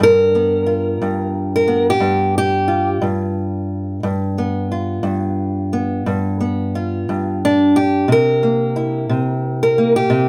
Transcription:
0, 0, Header, 1, 2, 480
1, 0, Start_track
1, 0, Tempo, 673401
1, 6, Time_signature, 12, 3, 24, 8
1, 7333, End_track
2, 0, Start_track
2, 0, Title_t, "Steel-string acoustic guitar"
2, 0, Program_c, 0, 25
2, 0, Note_on_c, 0, 43, 77
2, 24, Note_on_c, 0, 70, 106
2, 250, Note_on_c, 0, 59, 48
2, 474, Note_on_c, 0, 65, 46
2, 721, Note_off_c, 0, 43, 0
2, 724, Note_on_c, 0, 43, 72
2, 1094, Note_off_c, 0, 70, 0
2, 1109, Note_on_c, 0, 70, 76
2, 1192, Note_off_c, 0, 59, 0
2, 1195, Note_on_c, 0, 59, 48
2, 1337, Note_off_c, 0, 70, 0
2, 1354, Note_on_c, 0, 67, 83
2, 1425, Note_off_c, 0, 43, 0
2, 1427, Note_on_c, 0, 43, 73
2, 1686, Note_off_c, 0, 67, 0
2, 1695, Note_on_c, 0, 67, 89
2, 1900, Note_off_c, 0, 65, 0
2, 1909, Note_on_c, 0, 65, 50
2, 2141, Note_off_c, 0, 43, 0
2, 2150, Note_on_c, 0, 43, 72
2, 2169, Note_off_c, 0, 67, 0
2, 2847, Note_off_c, 0, 65, 0
2, 2848, Note_off_c, 0, 43, 0
2, 2850, Note_off_c, 0, 59, 0
2, 2875, Note_on_c, 0, 43, 74
2, 3124, Note_on_c, 0, 59, 44
2, 3361, Note_on_c, 0, 65, 47
2, 3576, Note_off_c, 0, 43, 0
2, 3585, Note_on_c, 0, 43, 69
2, 4075, Note_off_c, 0, 59, 0
2, 4084, Note_on_c, 0, 59, 47
2, 4314, Note_off_c, 0, 43, 0
2, 4321, Note_on_c, 0, 43, 74
2, 4557, Note_off_c, 0, 59, 0
2, 4566, Note_on_c, 0, 59, 48
2, 4802, Note_off_c, 0, 65, 0
2, 4813, Note_on_c, 0, 65, 47
2, 5042, Note_off_c, 0, 43, 0
2, 5054, Note_on_c, 0, 43, 67
2, 5288, Note_off_c, 0, 65, 0
2, 5310, Note_on_c, 0, 62, 91
2, 5532, Note_on_c, 0, 67, 89
2, 5536, Note_off_c, 0, 62, 0
2, 5736, Note_off_c, 0, 59, 0
2, 5740, Note_off_c, 0, 43, 0
2, 5760, Note_on_c, 0, 48, 71
2, 5768, Note_off_c, 0, 67, 0
2, 5790, Note_on_c, 0, 70, 94
2, 6009, Note_on_c, 0, 58, 45
2, 6244, Note_on_c, 0, 64, 46
2, 6480, Note_off_c, 0, 48, 0
2, 6483, Note_on_c, 0, 48, 67
2, 6854, Note_off_c, 0, 70, 0
2, 6863, Note_on_c, 0, 70, 77
2, 6968, Note_off_c, 0, 58, 0
2, 6971, Note_on_c, 0, 58, 48
2, 7093, Note_off_c, 0, 70, 0
2, 7100, Note_on_c, 0, 67, 86
2, 7195, Note_off_c, 0, 48, 0
2, 7198, Note_on_c, 0, 48, 78
2, 7333, Note_off_c, 0, 48, 0
2, 7333, Note_off_c, 0, 58, 0
2, 7333, Note_off_c, 0, 64, 0
2, 7333, Note_off_c, 0, 67, 0
2, 7333, End_track
0, 0, End_of_file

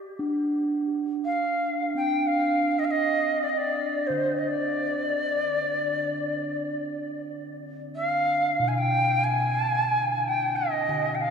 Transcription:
0, 0, Header, 1, 3, 480
1, 0, Start_track
1, 0, Tempo, 500000
1, 10852, End_track
2, 0, Start_track
2, 0, Title_t, "Native American-style wooden flute"
2, 0, Program_c, 0, 77
2, 1193, Note_on_c, 0, 77, 84
2, 1840, Note_off_c, 0, 77, 0
2, 1884, Note_on_c, 0, 79, 82
2, 2177, Note_on_c, 0, 77, 79
2, 2191, Note_off_c, 0, 79, 0
2, 2672, Note_on_c, 0, 75, 76
2, 2687, Note_off_c, 0, 77, 0
2, 2724, Note_on_c, 0, 77, 73
2, 2738, Note_off_c, 0, 75, 0
2, 2785, Note_on_c, 0, 75, 82
2, 2800, Note_off_c, 0, 77, 0
2, 3293, Note_on_c, 0, 74, 71
2, 3307, Note_off_c, 0, 75, 0
2, 3348, Note_on_c, 0, 75, 62
2, 3363, Note_off_c, 0, 74, 0
2, 3428, Note_on_c, 0, 74, 73
2, 3442, Note_off_c, 0, 75, 0
2, 3900, Note_on_c, 0, 72, 71
2, 3914, Note_off_c, 0, 74, 0
2, 4207, Note_on_c, 0, 75, 52
2, 4222, Note_off_c, 0, 72, 0
2, 4296, Note_on_c, 0, 74, 79
2, 4311, Note_off_c, 0, 75, 0
2, 6515, Note_off_c, 0, 74, 0
2, 7632, Note_on_c, 0, 77, 93
2, 8328, Note_on_c, 0, 80, 57
2, 8342, Note_off_c, 0, 77, 0
2, 8425, Note_on_c, 0, 79, 87
2, 8440, Note_off_c, 0, 80, 0
2, 8866, Note_on_c, 0, 80, 99
2, 8880, Note_off_c, 0, 79, 0
2, 9868, Note_on_c, 0, 79, 88
2, 9882, Note_off_c, 0, 80, 0
2, 10131, Note_on_c, 0, 75, 72
2, 10145, Note_off_c, 0, 79, 0
2, 10697, Note_on_c, 0, 79, 55
2, 10711, Note_off_c, 0, 75, 0
2, 10754, Note_on_c, 0, 77, 73
2, 10769, Note_off_c, 0, 79, 0
2, 10852, Note_off_c, 0, 77, 0
2, 10852, End_track
3, 0, Start_track
3, 0, Title_t, "Singing bowl"
3, 0, Program_c, 1, 14
3, 185, Note_on_c, 1, 62, 71
3, 1870, Note_on_c, 1, 60, 40
3, 3936, Note_on_c, 1, 50, 43
3, 7348, Note_off_c, 1, 62, 0
3, 8252, Note_on_c, 1, 47, 61
3, 9036, Note_off_c, 1, 60, 0
3, 10441, Note_off_c, 1, 50, 0
3, 10452, Note_on_c, 1, 50, 60
3, 10852, Note_off_c, 1, 47, 0
3, 10852, Note_off_c, 1, 50, 0
3, 10852, End_track
0, 0, End_of_file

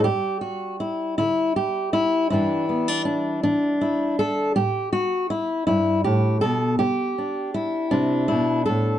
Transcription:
0, 0, Header, 1, 2, 480
1, 0, Start_track
1, 0, Key_signature, 1, "major"
1, 0, Tempo, 750000
1, 31, Time_signature, 6, 3, 24, 8
1, 5752, End_track
2, 0, Start_track
2, 0, Title_t, "Steel-string acoustic guitar"
2, 0, Program_c, 0, 25
2, 0, Note_on_c, 0, 55, 47
2, 26, Note_on_c, 0, 67, 74
2, 34, Note_on_c, 0, 43, 50
2, 261, Note_off_c, 0, 67, 0
2, 263, Note_on_c, 0, 66, 58
2, 470, Note_off_c, 0, 43, 0
2, 510, Note_off_c, 0, 66, 0
2, 512, Note_on_c, 0, 64, 59
2, 746, Note_off_c, 0, 64, 0
2, 754, Note_on_c, 0, 64, 69
2, 766, Note_on_c, 0, 50, 41
2, 997, Note_off_c, 0, 64, 0
2, 999, Note_on_c, 0, 67, 71
2, 1198, Note_off_c, 0, 50, 0
2, 1233, Note_off_c, 0, 67, 0
2, 1235, Note_on_c, 0, 64, 73
2, 1467, Note_off_c, 0, 64, 0
2, 1474, Note_on_c, 0, 64, 67
2, 1483, Note_on_c, 0, 43, 57
2, 1484, Note_off_c, 0, 55, 0
2, 1488, Note_on_c, 0, 52, 38
2, 1492, Note_on_c, 0, 55, 39
2, 1497, Note_on_c, 0, 62, 36
2, 1720, Note_off_c, 0, 62, 0
2, 1722, Note_on_c, 0, 59, 34
2, 1843, Note_off_c, 0, 59, 0
2, 1843, Note_on_c, 0, 62, 24
2, 1914, Note_off_c, 0, 43, 0
2, 1945, Note_off_c, 0, 62, 0
2, 1953, Note_on_c, 0, 62, 59
2, 2190, Note_off_c, 0, 62, 0
2, 2198, Note_on_c, 0, 62, 67
2, 2201, Note_off_c, 0, 52, 0
2, 2203, Note_on_c, 0, 52, 50
2, 2433, Note_off_c, 0, 64, 0
2, 2441, Note_on_c, 0, 64, 59
2, 2632, Note_off_c, 0, 52, 0
2, 2679, Note_off_c, 0, 64, 0
2, 2681, Note_on_c, 0, 69, 81
2, 2914, Note_off_c, 0, 69, 0
2, 2916, Note_off_c, 0, 62, 0
2, 2916, Note_on_c, 0, 67, 80
2, 2919, Note_on_c, 0, 45, 57
2, 2922, Note_off_c, 0, 55, 0
2, 3150, Note_off_c, 0, 67, 0
2, 3152, Note_on_c, 0, 66, 69
2, 3348, Note_off_c, 0, 45, 0
2, 3390, Note_off_c, 0, 66, 0
2, 3393, Note_on_c, 0, 64, 69
2, 3619, Note_off_c, 0, 64, 0
2, 3627, Note_on_c, 0, 64, 68
2, 3634, Note_on_c, 0, 43, 49
2, 3865, Note_off_c, 0, 64, 0
2, 3868, Note_on_c, 0, 67, 67
2, 3871, Note_off_c, 0, 43, 0
2, 3876, Note_on_c, 0, 45, 49
2, 4101, Note_off_c, 0, 67, 0
2, 4103, Note_on_c, 0, 69, 80
2, 4111, Note_off_c, 0, 45, 0
2, 4117, Note_on_c, 0, 47, 52
2, 4342, Note_off_c, 0, 69, 0
2, 4344, Note_on_c, 0, 67, 73
2, 4348, Note_off_c, 0, 47, 0
2, 4350, Note_on_c, 0, 48, 60
2, 4597, Note_on_c, 0, 62, 31
2, 4780, Note_off_c, 0, 48, 0
2, 4825, Note_off_c, 0, 67, 0
2, 4828, Note_on_c, 0, 64, 67
2, 5060, Note_off_c, 0, 62, 0
2, 5062, Note_on_c, 0, 62, 67
2, 5072, Note_on_c, 0, 48, 52
2, 5292, Note_off_c, 0, 64, 0
2, 5299, Note_on_c, 0, 64, 68
2, 5311, Note_off_c, 0, 48, 0
2, 5321, Note_on_c, 0, 47, 46
2, 5537, Note_off_c, 0, 64, 0
2, 5540, Note_on_c, 0, 69, 65
2, 5557, Note_off_c, 0, 47, 0
2, 5560, Note_on_c, 0, 45, 41
2, 5752, Note_off_c, 0, 45, 0
2, 5752, Note_off_c, 0, 62, 0
2, 5752, Note_off_c, 0, 69, 0
2, 5752, End_track
0, 0, End_of_file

